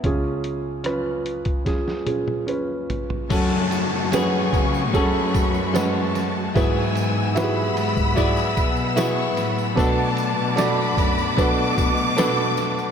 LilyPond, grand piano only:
<<
  \new Staff \with { instrumentName = "Grand piano" } { \time 4/4 \key fis \minor \tempo 4 = 74 <cis' eis' gis'>4 <cis' eis' b'>4 <cis' eis' gis'>8 <cis' eis' gis'>8 <cis' eis' b'>4 | <cis' fis' a'>4 <cis' fis' gis' b'>4 <cis' fis' gis' a'>4 <gis cis' fis' b'>4 | <e' fis' gis' b'>4 <e' fis' g' gis' b'>4 <e' fis' gis' d''>4 <e' fis' gis' b'>4 | <d' fis' a' b'>4 <d' fis' a' d''>4 <d' fis' a' b'>4 <d' fis' a' b'>4 | }
  \new Staff \with { instrumentName = "Grand piano" } { \clef bass \time 4/4 \key fis \minor <cis, cis>1 | r1 | gis,4. r2 r8 | b,4. r2 r8 | }
>>